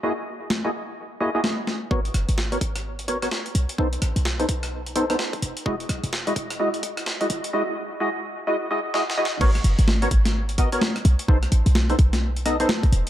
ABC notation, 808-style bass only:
X:1
M:4/4
L:1/16
Q:"Swing 16ths" 1/4=128
K:G#m
V:1 name="808-style bass" clef=bass
z16 | G,,, z F,,, G,,,3 G,,,6 z2 B,,, z | B,,, z =A,,, B,,,3 B,,,6 z2 E,,, z | E,,, z B,,, E,,,3 E,,,6 z2 G,,, z |
z16 | G,,, z F,,, G,,,3 G,,,6 z2 B,,, z | B,,, z =A,,, B,,,3 B,,,6 z2 E,,, z |]